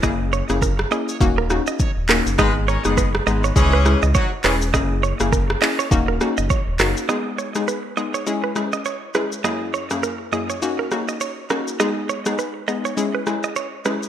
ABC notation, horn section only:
X:1
M:4/4
L:1/16
Q:"Swing 16ths" 1/4=102
K:G#m
V:1 name="Horn section"
z16 | [G,DB] z [CAc] [B,Gd]2 z [G,DB]2 [E,CG]3 z [F,DF] z [E,CG] z | z16 | z16 |
z16 | z16 |]